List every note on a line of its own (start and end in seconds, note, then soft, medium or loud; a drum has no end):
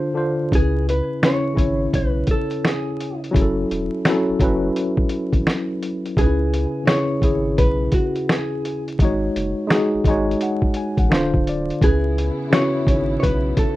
0.00 0.10 D3 medium
0.00 0.11 D4 medium
0.00 0.11 F4 medium
0.00 0.12 C5 loud
0.14 0.44 D3 medium
0.14 0.44 D4 medium
0.14 0.45 F4 medium
0.14 0.46 C5 medium
0.51 1.01 C#2 loud
0.51 1.08 C#3 medium
0.51 1.08 C#4 medium
0.51 1.09 E4 medium
0.51 1.10 B4 medium
0.51 kick loud
0.51 closed hi-hat medium
0.55 0.87 G#4 medium
0.89 1.25 B4 medium
0.89 closed hi-hat medium
1.23 1.51 C#3 medium
1.23 1.52 C#4 medium
1.23 1.52 E4 medium
1.23 1.96 C#5 loud
1.23 finger snap medium
1.23 snare loud
1.23 closed hi-hat medium
1.27 1.53 C#5 medium
1.54 2.60 C#3 medium
1.54 2.61 C#4 medium
1.54 2.61 E4 medium
1.54 2.62 C#5 medium
1.54 kick loud
1.58 1.88 G#1 medium
1.58 closed hi-hat medium
1.93 2.24 B1 medium
1.93 2.31 B4 medium
1.93 kick medium
1.93 closed hi-hat medium
2.27 kick medium
2.27 closed hi-hat medium
2.31 2.66 A4 medium
2.51 closed hi-hat soft
2.65 3.19 G#4 medium
2.65 finger snap loud
2.65 snare loud
2.65 closed hi-hat medium
3.00 closed hi-hat medium
3.24 closed hi-hat soft
3.31 3.89 F#3 medium
3.31 3.90 C#4 medium
3.31 3.90 E4 medium
3.31 kick loud
3.35 3.65 F#1 loud
3.35 3.43 G#4 medium
3.35 closed hi-hat medium
3.42 3.94 A4 loud
3.71 3.89 E1 medium
3.71 closed hi-hat medium
4.05 4.34 F#3 medium
4.05 4.34 C#4 medium
4.05 4.35 E4 medium
4.05 finger snap medium
4.05 snare loud
4.05 closed hi-hat medium
4.10 4.36 A4 loud
4.29 4.34 F#1 soft
4.39 4.70 F#1 loud
4.39 5.44 F#3 medium
4.39 5.45 C#4 medium
4.39 5.46 E4 medium
4.39 kick loud
4.39 closed hi-hat medium
4.44 5.46 B4 medium
4.76 closed hi-hat medium
4.97 kick medium
5.09 closed hi-hat medium
5.33 5.44 G#1 medium
5.33 kick medium
5.33 closed hi-hat soft
5.47 finger snap loud
5.47 snare loud
5.47 closed hi-hat medium
5.83 closed hi-hat medium
6.06 closed hi-hat soft
6.17 6.66 C#2 loud
6.17 6.73 C#3 medium
6.17 6.74 C#4 medium
6.17 6.26 D#4 medium
6.17 6.90 G#4 loud
6.17 kick loud
6.17 closed hi-hat medium
6.21 6.75 B4 medium
6.26 6.78 E4 medium
6.54 closed hi-hat medium
6.84 7.14 C#3 medium
6.84 7.15 C#4 medium
6.84 7.16 E4 medium
6.84 7.60 C#5 loud
6.84 finger snap medium
6.84 snare loud
6.88 7.16 G#4 medium
6.88 closed hi-hat medium
7.21 7.61 G#1 medium
7.21 8.26 C#3 medium
7.21 8.26 C#4 medium
7.21 8.27 E4 medium
7.21 8.28 G#4 medium
7.21 kick loud
7.21 closed hi-hat medium
7.58 7.89 B1 medium
7.58 7.91 B4 loud
7.58 kick loud
7.58 closed hi-hat medium
7.92 8.30 F#4 medium
7.92 kick medium
7.92 closed hi-hat medium
8.16 closed hi-hat soft
8.29 8.83 G#4 medium
8.29 finger snap loud
8.29 snare loud
8.29 closed hi-hat medium
8.65 closed hi-hat medium
8.88 closed hi-hat soft
8.99 9.30 G#1 loud
8.99 9.56 G#3 medium
8.99 9.57 D#4 medium
8.99 kick loud
8.99 closed hi-hat medium
9.04 9.58 F#4 medium
9.04 9.58 C#5 loud
9.36 9.54 F#1 medium
9.36 closed hi-hat medium
9.67 9.97 G#3 medium
9.67 9.98 D#4 medium
9.67 9.99 F#4 medium
9.67 finger snap medium
9.67 snare loud
9.71 9.99 G#4 loud
9.71 closed hi-hat medium
9.94 9.99 G#1 soft
10.04 10.35 G#1 medium
10.04 11.10 G#3 medium
10.04 11.11 D#4 medium
10.04 kick loud
10.04 closed hi-hat medium
10.09 11.11 F#4 medium
10.09 11.12 C#5 loud
10.09 10.40 G#5 medium
10.31 closed hi-hat soft
10.41 10.74 F#5 medium
10.41 closed hi-hat medium
10.62 kick medium
10.74 10.97 G#5 medium
10.74 closed hi-hat medium
10.97 11.09 A1 loud
10.97 11.11 F#5 medium
10.97 kick medium
10.97 closed hi-hat soft
11.09 11.71 D1 medium
11.09 11.70 D3 medium
11.09 11.71 D4 medium
11.09 11.72 F4 medium
11.09 11.72 C5 loud
11.09 11.44 F5 medium
11.09 finger snap loud
11.09 snare loud
11.14 closed hi-hat medium
11.34 kick medium
11.47 11.81 D5 medium
11.47 closed hi-hat medium
11.70 closed hi-hat soft
11.81 12.31 C#2 loud
11.81 12.37 C#3 medium
11.81 13.76 C#3 medium
11.81 13.76 E3 medium
11.81 13.76 B3 medium
11.81 12.38 C#4 medium
11.81 13.76 E4 medium
11.81 12.39 E4 medium
11.81 12.55 G#4 loud
11.81 12.39 B4 medium
11.81 kick loud
11.81 closed hi-hat medium
12.18 closed hi-hat medium
12.50 12.79 C#3 medium
12.50 12.80 C#4 medium
12.50 12.81 E4 medium
12.50 13.14 C#5 loud
12.50 finger snap medium
12.50 snare loud
12.54 12.82 F#4 medium
12.54 closed hi-hat medium
12.87 13.17 G#1 medium
12.87 13.76 C#3 medium
12.87 13.76 C#4 medium
12.87 12.96 D#4 soft
12.87 13.76 C#5 medium
12.87 kick loud
12.87 closed hi-hat medium
12.96 13.76 E4 medium
13.20 13.53 B1 medium
13.20 13.58 B4 loud
13.20 13.24 C#5 medium
13.20 kick medium
13.20 closed hi-hat medium
13.57 13.76 A4 medium
13.57 kick medium
13.57 closed hi-hat medium